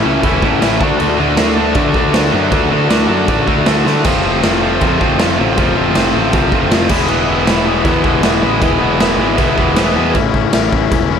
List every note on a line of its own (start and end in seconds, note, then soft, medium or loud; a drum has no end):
0.05 0.22 C#2 loud
0.05 0.23 A2 loud
0.05 0.23 E3 medium
0.05 0.25 A3 medium
0.05 0.24 C#4 loud
0.05 0.24 E4 medium
0.23 0.41 E1 loud
0.23 0.42 A2 medium
0.23 0.43 E3 medium
0.23 0.44 A3 loud
0.23 0.44 C#4 medium
0.23 0.44 E4 medium
0.23 kick loud
0.23 crash medium
0.42 0.60 A1 medium
0.42 0.62 A2 medium
0.42 0.62 E3 loud
0.42 0.63 A3 medium
0.42 0.62 C#4 loud
0.42 0.63 E4 medium
0.42 kick medium
0.62 0.81 A1 medium
0.62 0.80 A2 loud
0.62 0.80 E3 loud
0.62 0.82 A3 loud
0.62 0.81 C#4 loud
0.62 0.81 E4 loud
0.62 snare loud
0.62 crash medium
0.81 0.98 D2 loud
0.81 1.00 D3 loud
0.81 1.00 A3 medium
0.81 1.01 D4 loud
0.81 1.01 F#4 loud
0.81 kick loud
1.00 1.17 D2 loud
1.00 1.19 D3 loud
1.00 1.19 A3 loud
1.00 1.20 D4 loud
1.00 1.20 F#4 loud
1.00 crash medium
1.19 1.36 D2 medium
1.19 1.38 D3 medium
1.19 1.38 A3 medium
1.19 1.38 D4 loud
1.19 1.39 F#4 loud
1.37 1.73 D2 medium
1.37 1.57 D3 medium
1.37 1.57 A3 medium
1.37 1.58 D4 loud
1.37 1.58 F#4 loud
1.37 snare loud
1.37 crash medium
1.58 1.76 D3 medium
1.58 1.76 A3 loud
1.58 1.76 D4 loud
1.58 1.77 F#4 loud
1.75 1.93 D3 loud
1.75 1.95 D3 medium
1.75 1.96 A3 medium
1.75 1.96 D4 loud
1.75 1.96 F#4 medium
1.75 kick loud
1.75 crash medium
1.94 2.12 D2 medium
1.94 2.13 D3 medium
1.94 2.14 A3 loud
1.94 2.14 D4 medium
1.94 2.15 F#4 medium
1.94 kick loud
2.14 2.32 D2 medium
2.14 2.33 D3 medium
2.14 2.34 A3 loud
2.14 2.34 D4 loud
2.14 2.34 F#4 loud
2.14 snare loud
2.14 crash medium
2.34 2.51 F#2 loud
2.34 2.51 D3 loud
2.34 2.53 A3 loud
2.34 2.52 D4 medium
2.34 2.52 F#4 loud
2.52 2.69 D2 loud
2.52 2.70 D3 loud
2.52 2.72 A3 loud
2.52 2.71 D4 loud
2.52 2.72 F#4 loud
2.52 kick loud
2.52 crash medium
2.72 2.89 D2 loud
2.72 2.89 D3 medium
2.72 2.90 A3 medium
2.72 2.89 D4 loud
2.72 2.90 F#4 loud
2.90 3.07 D2 medium
2.90 3.08 D3 loud
2.90 3.09 A3 loud
2.90 3.09 D4 medium
2.90 3.09 F#4 medium
2.90 snare loud
2.90 crash medium
3.09 3.27 F#2 medium
3.09 3.27 D3 medium
3.09 3.28 A3 medium
3.09 3.28 D4 medium
3.09 3.28 F#4 loud
3.28 3.46 A1 loud
3.28 3.47 D3 medium
3.28 3.48 A3 medium
3.28 3.48 D4 loud
3.28 3.48 F#4 loud
3.28 kick loud
3.28 crash medium
3.48 3.65 D2 medium
3.48 3.66 D3 medium
3.48 3.67 A3 medium
3.48 3.66 D4 medium
3.48 3.67 F#4 medium
3.48 kick medium
3.66 3.84 D2 medium
3.66 3.85 D3 medium
3.66 3.86 A3 loud
3.66 3.87 D4 loud
3.66 3.86 F#4 loud
3.66 snare loud
3.66 crash medium
3.86 4.03 D3 loud
3.86 4.04 D3 loud
3.86 4.06 A3 medium
3.86 4.05 D4 medium
3.86 4.05 F#4 loud
3.86 snare medium
4.04 4.22 F1 medium
4.04 4.22 F2 medium
4.04 4.22 C3 loud
4.04 4.24 F3 loud
4.04 4.24 A3 loud
4.04 4.24 C4 loud
4.04 4.25 F4 loud
4.04 kick loud
4.04 crash loud
4.04 crash medium
4.22 4.42 F1 medium
4.22 4.43 F2 medium
4.22 4.42 C3 medium
4.22 4.42 F3 medium
4.22 4.43 A3 medium
4.22 4.43 C4 medium
4.22 4.43 F4 loud
4.43 4.78 F1 medium
4.43 4.60 F2 loud
4.43 4.61 C3 loud
4.43 4.60 F3 medium
4.43 4.61 A3 medium
4.43 4.61 C4 loud
4.43 4.62 F4 loud
4.43 snare loud
4.43 crash medium
4.61 4.79 F2 loud
4.61 4.80 C3 loud
4.61 4.79 F3 medium
4.61 4.80 A3 loud
4.61 4.81 C4 medium
4.61 4.81 F4 loud
4.80 4.99 F2 medium
4.80 4.99 F2 loud
4.80 4.99 C3 medium
4.80 4.98 F3 medium
4.80 4.99 A3 medium
4.80 5.00 C4 medium
4.80 5.00 F4 loud
4.80 kick loud
4.80 crash medium
5.00 5.18 F1 medium
5.00 5.18 F2 medium
5.00 5.19 C3 medium
5.00 5.17 F3 medium
5.00 5.17 A3 medium
5.00 5.18 C4 loud
5.00 5.18 F4 medium
5.00 kick loud
5.18 5.37 F1 loud
5.18 5.37 F2 loud
5.18 5.38 C3 loud
5.18 5.37 F3 medium
5.18 5.38 A3 loud
5.18 5.38 C4 medium
5.18 5.38 F4 loud
5.18 snare loud
5.18 crash medium
5.38 5.57 A1 loud
5.38 5.56 F2 medium
5.38 5.57 C3 medium
5.38 5.56 F3 medium
5.38 5.56 A3 loud
5.38 5.57 C4 loud
5.38 5.57 F4 loud
5.57 5.75 F1 loud
5.57 5.77 F2 medium
5.57 5.77 C3 loud
5.57 5.74 F3 loud
5.57 5.75 A3 loud
5.57 5.75 C4 loud
5.57 5.76 F4 loud
5.57 kick loud
5.57 crash medium
5.76 5.94 F1 medium
5.76 5.94 F2 medium
5.76 5.95 C3 medium
5.76 5.94 F3 medium
5.76 5.94 A3 medium
5.76 5.95 C4 loud
5.76 5.95 F4 loud
5.95 6.13 F1 loud
5.95 6.13 F2 medium
5.95 6.14 C3 loud
5.95 6.13 F3 medium
5.95 6.14 A3 loud
5.95 6.14 C4 medium
5.95 6.15 F4 loud
5.95 snare loud
5.95 crash medium
6.14 6.32 A1 loud
6.14 6.32 F2 medium
6.14 6.33 C3 medium
6.14 6.32 F3 loud
6.14 6.33 A3 loud
6.14 6.33 C4 loud
6.14 6.33 F4 loud
6.33 6.51 C2 loud
6.33 6.52 F2 medium
6.33 6.52 C3 medium
6.33 6.51 F3 medium
6.33 6.52 A3 loud
6.33 6.52 C4 medium
6.33 6.53 F4 medium
6.33 kick loud
6.33 crash medium
6.52 6.70 F1 medium
6.52 6.71 F2 medium
6.52 6.72 C3 medium
6.52 6.70 F3 loud
6.52 6.71 A3 loud
6.52 6.70 C4 medium
6.52 6.71 F4 loud
6.52 kick loud
6.71 6.89 F1 loud
6.71 6.89 F2 loud
6.71 6.89 C3 loud
6.71 6.89 F3 loud
6.71 6.90 A3 loud
6.71 6.90 C4 loud
6.71 6.90 F4 loud
6.71 snare loud
6.71 crash medium
6.89 7.08 E1 loud
6.89 7.10 E2 medium
6.89 7.09 B2 loud
6.89 7.08 E3 loud
6.89 7.09 G#3 loud
6.89 7.09 B3 loud
6.89 7.09 E4 loud
6.89 kick loud
6.89 crash loud
7.08 7.27 E1 loud
7.08 7.28 E2 loud
7.08 7.28 B2 loud
7.08 7.27 E3 loud
7.08 7.27 G#3 loud
7.08 7.28 B3 loud
7.08 7.28 E4 loud
7.08 crash medium
7.27 7.47 E1 medium
7.27 7.47 E2 medium
7.27 7.47 B2 medium
7.27 7.45 E3 medium
7.27 7.46 G#3 loud
7.27 7.46 B3 loud
7.27 7.46 E4 loud
7.46 7.83 E1 medium
7.46 7.66 E2 loud
7.46 7.66 B2 medium
7.46 7.65 E3 medium
7.46 7.65 G#3 medium
7.46 7.65 B3 medium
7.46 7.66 E4 loud
7.46 snare loud
7.46 crash medium
7.65 7.83 E2 medium
7.65 7.84 B2 medium
7.65 7.84 E3 medium
7.65 7.83 G#3 medium
7.65 7.84 B3 loud
7.65 7.85 E4 loud
7.84 8.03 E2 medium
7.84 8.03 E2 loud
7.84 8.03 B2 medium
7.84 8.03 E3 loud
7.84 8.02 G#3 loud
7.84 8.03 B3 medium
7.84 8.04 E4 medium
7.84 kick loud
7.84 crash medium
8.03 8.22 E1 medium
8.03 8.22 E2 medium
8.03 8.22 B2 medium
8.03 8.22 E3 medium
8.03 8.22 G#3 loud
8.03 8.23 B3 medium
8.03 8.24 E4 medium
8.03 kick loud
8.23 8.41 E1 medium
8.23 8.41 E2 medium
8.23 8.42 B2 loud
8.23 8.42 E3 loud
8.23 8.41 G#3 loud
8.23 8.42 B3 loud
8.23 8.43 E4 loud
8.23 snare loud
8.23 crash medium
8.42 8.60 A1 medium
8.42 8.60 E2 medium
8.42 8.61 B2 medium
8.42 8.60 E3 medium
8.42 8.60 G#3 loud
8.42 8.60 B3 medium
8.42 8.61 E4 loud
8.61 8.80 E1 loud
8.61 8.80 E2 medium
8.61 8.81 B2 loud
8.61 8.78 E3 loud
8.61 8.79 G#3 loud
8.61 8.79 B3 loud
8.61 8.79 E4 loud
8.61 kick loud
8.61 crash medium
8.79 8.99 E1 medium
8.79 8.98 E2 medium
8.79 8.99 B2 medium
8.79 8.98 E3 medium
8.79 8.98 G#3 medium
8.79 8.98 B3 medium
8.79 8.99 E4 loud
8.99 9.18 E1 loud
8.99 9.19 E2 medium
8.99 9.19 B2 loud
8.99 9.17 E3 medium
8.99 9.18 G#3 loud
8.99 9.18 B3 medium
8.99 9.18 E4 loud
8.99 snare loud
8.99 crash medium
9.19 9.37 G#1 loud
9.19 9.38 E2 medium
9.19 9.38 B2 medium
9.19 9.36 E3 medium
9.19 9.37 G#3 loud
9.19 9.37 B3 medium
9.19 9.38 E4 loud
9.38 9.56 B1 loud
9.38 9.58 E2 medium
9.38 9.58 B2 medium
9.38 9.55 E3 medium
9.38 9.55 G#3 medium
9.38 9.56 B3 medium
9.38 9.56 E4 medium
9.38 kick loud
9.38 crash medium
9.56 9.76 E1 medium
9.56 9.76 E2 medium
9.56 9.77 B2 medium
9.56 9.76 E3 medium
9.56 9.76 G#3 medium
9.56 9.77 B3 medium
9.56 9.77 E4 medium
9.56 kick medium
9.60 9.77 E3 loud
9.76 9.95 E1 medium
9.76 9.95 E2 loud
9.76 9.96 B2 loud
9.76 9.95 E3 loud
9.76 9.95 G#3 loud
9.76 9.96 B3 loud
9.76 9.96 E4 loud
9.76 snare loud
9.76 crash medium
9.96 10.16 E2 medium
9.96 10.14 E2 medium
9.96 10.15 B2 medium
9.96 10.14 E3 medium
9.96 10.15 G#3 medium
9.96 10.15 B3 loud
9.96 10.15 E4 loud
10.15 10.30 A1 loud
10.15 10.33 A2 loud
10.15 10.33 E3 loud
10.15 10.34 A3 loud
10.15 10.34 C#4 loud
10.15 10.35 E4 loud
10.15 kick loud
10.15 crash medium
10.34 10.49 A1 medium
10.34 10.53 A2 loud
10.34 10.53 E3 medium
10.34 10.53 A3 medium
10.34 10.54 C#4 medium
10.34 10.54 E4 loud
10.34 kick medium
10.53 10.68 A1 medium
10.53 10.71 A2 medium
10.53 10.71 E3 medium
10.53 10.72 A3 loud
10.53 10.73 C#4 loud
10.53 10.73 E4 loud
10.53 snare loud
10.53 crash medium
10.73 10.87 A1 medium
10.73 10.90 A2 medium
10.73 10.91 E3 medium
10.73 10.91 A3 loud
10.73 10.92 C#4 medium
10.73 10.92 E4 loud
10.73 kick medium
10.91 11.19 E1 loud
10.91 11.08 A2 medium
10.91 11.09 E3 medium
10.91 11.09 A3 medium
10.91 11.10 C#4 loud
10.91 11.10 E4 loud
10.91 kick loud
10.91 crash medium
11.09 11.19 A2 loud
11.09 11.19 E3 loud
11.09 11.19 A3 loud
11.09 11.19 C#4 loud
11.09 11.19 E4 loud